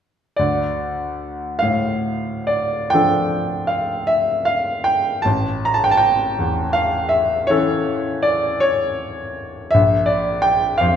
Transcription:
0.36 5.21 D2 soft
0.36 1.60 D5 medium
1.59 3.64 A2 soft
1.59 2.49 F5 medium
2.47 2.91 D5 medium
2.90 5.21 F3 soft
2.90 5.22 D4 soft
2.90 3.71 G5 medium
2.94 5.22 A4 soft
3.67 4.08 F5 soft
4.07 4.47 E5 medium
4.45 4.85 F5 medium
4.84 5.24 G5 medium
5.22 9.69 A1 soft
5.22 5.64 A5 medium
5.65 5.74 A#5 medium
5.74 5.83 A5 medium
5.84 5.92 G5 medium
5.91 6.00 A5 medium
5.97 6.73 G5 medium
6.39 8.19 E2 soft
6.73 7.11 F5 medium
7.09 7.48 E5 medium
7.47 9.69 E3 soft
7.47 9.70 C#4 soft
7.47 9.70 A4 soft
7.47 8.25 C#5 medium
8.22 8.61 D5 medium
8.60 9.72 C#5 medium
9.71 10.96 A#1 soft
9.71 10.08 E5 medium
10.06 10.43 D5 medium
10.42 10.79 G5 medium
10.78 10.96 F2 soft
10.78 10.96 F5 medium

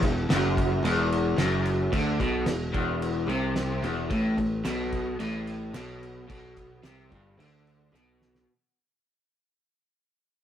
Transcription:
0.02 0.27 E1 medium
0.02 0.25 E2 medium
0.02 kick medium
0.02 crash medium
0.29 0.80 F#1 loud
0.29 0.84 F#2 loud
0.29 snare loud
0.29 crash loud
0.57 kick medium
0.57 crash medium
0.83 1.34 E1 loud
0.83 1.38 E2 loud
0.83 crash medium
1.12 crash medium
1.36 1.88 F#1 loud
1.36 1.92 F#2 loud
1.36 snare loud
1.36 crash medium
1.65 crash medium
1.92 2.18 D2 medium
1.92 2.19 D3 loud
1.92 kick loud
1.92 crash medium
2.20 2.45 B1 loud
2.20 2.47 B2 loud
2.20 kick medium
2.20 snare soft
2.20 crash medium
2.46 2.72 E1 medium
2.46 2.69 E2 medium
2.46 snare loud
2.46 crash medium
2.73 3.25 E1 loud
2.73 3.27 E2 loud
2.73 kick medium
2.73 crash medium
3.02 crash medium
3.27 3.79 C2 loud
3.27 3.82 C3 loud
3.27 crash medium
3.56 snare loud
3.56 crash medium
3.83 4.09 E1 loud
3.83 4.10 E2 loud
3.83 crash medium
4.10 4.36 A1 medium
4.10 4.37 A2 loud
4.10 kick loud
4.10 crash medium
4.37 4.63 A1 medium
4.37 4.60 A2 medium
4.37 kick medium
4.37 crash medium
4.65 5.16 B1 loud
4.65 5.19 B2 loud
4.65 snare loud
4.65 clap loud
4.65 crash loud
4.92 kick medium
4.92 crash medium
5.20 5.71 A1 loud
5.20 5.74 A2 loud
5.20 crash medium
5.47 crash medium
5.74 6.25 B1 loud
5.74 6.26 B2 loud
5.74 snare loud
5.74 clap loud
5.74 crash medium
6.03 crash medium
6.28 6.81 B1 medium
6.28 6.82 B2 loud
6.28 kick loud
6.28 crash medium
6.56 kick medium
6.56 snare soft
6.56 clap medium
6.56 crash medium
6.83 7.09 C2 loud
6.83 7.10 C3 loud
6.83 snare loud
6.83 clap loud
6.83 crash medium
7.10 7.37 G1 medium
7.10 7.38 G2 loud
7.10 kick medium
7.10 crash medium
7.38 7.89 D2 loud
7.38 7.93 D3 loud
7.38 crash medium
7.67 crash medium
7.92 8.44 B1 loud
7.92 8.47 B2 loud
7.92 snare medium
7.92 clap loud
8.22 snare loud
8.35 snare medium

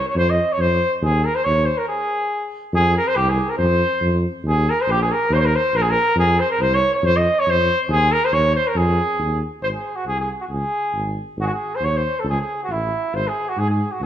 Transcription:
0.09 0.16 C#5 medium
0.15 0.39 F2 loud
0.15 0.31 C5 loud
0.30 0.54 D#5 medium
0.52 0.62 C#5 medium
0.58 0.82 F2 medium
0.58 0.93 C5 loud
1.02 1.25 D#2 medium
1.02 1.26 G#4 medium
1.25 1.37 A#4 medium
1.35 1.46 C5 medium
1.44 1.69 D#2 medium
1.44 1.67 C#5 loud
1.65 1.79 C5 medium
1.78 1.87 A#4 medium
1.88 2.48 G#4 medium
2.73 2.97 F2 loud
2.73 2.94 G#4 loud
2.97 3.09 A#4 medium
3.07 3.17 C5 loud
3.16 3.40 C2 medium
3.16 3.31 G4 loud
3.29 3.51 G#4 medium
3.49 3.57 A#4 medium
3.58 3.82 F2 loud
3.58 4.19 C5 medium
4.01 4.25 F2 loud
4.44 4.68 D#2 loud
4.48 4.71 G#4 medium
4.70 4.83 A#4 medium
4.81 4.92 C5 medium
4.87 5.11 A#1 medium
4.87 5.01 G4 medium
5.02 5.13 G#4 medium
5.12 5.35 A#4 medium
5.30 5.54 D#2 loud
5.30 5.37 C5 loud
5.35 5.47 C5 medium
5.35 5.40 C#5 medium
5.45 5.57 A#4 medium
5.55 5.78 C5 medium
5.73 5.97 A#1 medium
5.73 5.83 A#4 loud
5.82 5.92 G#4 medium
5.90 6.18 A#4 loud
6.15 6.39 F2 loud
6.15 6.41 G#4 loud
6.40 6.50 C5 medium
6.51 6.63 A#4 medium
6.59 6.83 C2 medium
6.59 6.76 C5 loud
6.74 6.94 C#5 loud
6.95 7.06 C#5 medium
7.02 7.26 F2 loud
7.02 7.18 C5 loud
7.17 7.41 D#5 medium
7.39 7.51 C#5 loud
7.46 7.70 F2 medium
7.46 7.81 C5 loud
7.89 8.13 D#2 loud
7.89 8.13 G#4 loud
8.12 8.26 A#4 medium
8.25 8.34 C5 loud
8.32 8.56 D#2 medium
8.32 8.54 C#5 loud
8.55 8.69 C5 medium
8.67 8.79 A#4 medium
8.75 8.99 F2 loud
8.75 9.42 G#4 medium
9.18 9.43 D#2 medium
9.62 9.74 G#1 medium
9.62 9.68 C5 medium
9.75 9.97 G#4 medium
9.96 10.06 F#4 medium
10.06 10.30 C2 medium
10.06 10.18 G#4 medium
10.20 10.29 G#4 medium
10.40 10.45 F#4 medium
10.49 10.61 C#2 medium
10.49 11.13 G#4 medium
10.93 11.18 G#1 medium
11.37 11.49 G#1 medium
11.37 11.43 F#4 medium
11.42 11.48 G#4 medium
11.46 11.51 F#4 medium
11.53 11.77 G#4 medium
11.76 11.86 C5 medium
11.80 12.05 D#2 medium
11.80 11.98 C#5 medium
11.97 12.21 C5 medium
12.20 12.28 A4 medium
12.24 12.37 C#2 medium
12.29 12.39 G#4 medium
12.40 12.59 G#4 medium
12.64 12.73 F#4 medium
12.68 12.92 A1 medium
12.68 13.17 E4 medium
13.13 13.25 G#1 medium
13.13 13.29 C5 medium
13.28 13.50 G#4 medium
13.49 13.61 F#4 medium
13.57 13.81 G#2 medium
13.57 13.69 G#4 medium
13.70 13.93 G#4 medium
13.92 14.01 F#4 medium
14.01 14.06 C#2 medium

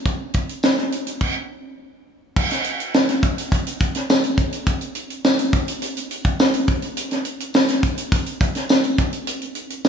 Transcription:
0.06 kick loud
0.06 closed hi-hat medium
0.34 kick medium
0.34 closed hi-hat medium
0.49 closed hi-hat soft
0.63 snare loud
0.63 tambourine medium
0.78 snare soft
0.78 closed hi-hat soft
0.92 closed hi-hat medium
1.07 closed hi-hat medium
1.21 kick medium
1.21 crash medium
2.36 kick loud
2.36 crash medium
2.51 snare soft
2.51 closed hi-hat soft
2.64 closed hi-hat medium
2.80 closed hi-hat medium
2.94 snare loud
2.94 tambourine medium
3.09 snare soft
3.09 closed hi-hat soft
3.23 kick loud
3.23 closed hi-hat medium
3.38 closed hi-hat medium
3.52 kick medium
3.52 closed hi-hat medium
3.67 closed hi-hat medium
3.81 kick medium
3.81 closed hi-hat medium
3.95 snare soft
3.95 closed hi-hat medium
4.10 snare loud
4.10 tambourine loud
4.24 closed hi-hat medium
4.38 kick medium
4.38 closed hi-hat medium
4.53 closed hi-hat medium
4.67 kick medium
4.67 closed hi-hat medium
4.81 closed hi-hat medium
4.95 closed hi-hat medium
5.10 closed hi-hat medium
5.25 snare loud
5.25 tambourine medium
5.39 closed hi-hat medium
5.53 kick medium
5.53 closed hi-hat medium
5.68 closed hi-hat medium
5.82 closed hi-hat medium
5.97 closed hi-hat medium
6.11 closed hi-hat medium
6.25 kick medium
6.25 closed hi-hat soft
6.40 snare loud
6.40 tambourine medium
6.54 closed hi-hat medium
6.68 kick loud
6.68 closed hi-hat medium
6.82 closed hi-hat soft
6.97 closed hi-hat medium
7.11 snare soft
7.11 closed hi-hat soft
7.25 closed hi-hat medium
7.40 closed hi-hat medium
7.54 snare loud
7.54 tambourine medium
7.69 snare soft
7.69 closed hi-hat soft
7.83 kick loud
7.83 closed hi-hat medium
7.98 closed hi-hat medium
8.12 kick loud
8.12 closed hi-hat medium
8.26 closed hi-hat medium
8.41 kick medium
8.41 closed hi-hat medium
8.55 snare soft
8.55 closed hi-hat medium
8.69 snare loud
8.69 tambourine medium
8.84 closed hi-hat soft
8.98 kick medium
8.98 closed hi-hat medium
9.13 closed hi-hat soft
9.27 closed hi-hat medium
9.42 closed hi-hat soft
9.55 closed hi-hat medium
9.70 closed hi-hat medium
9.85 snare loud
9.85 tambourine medium

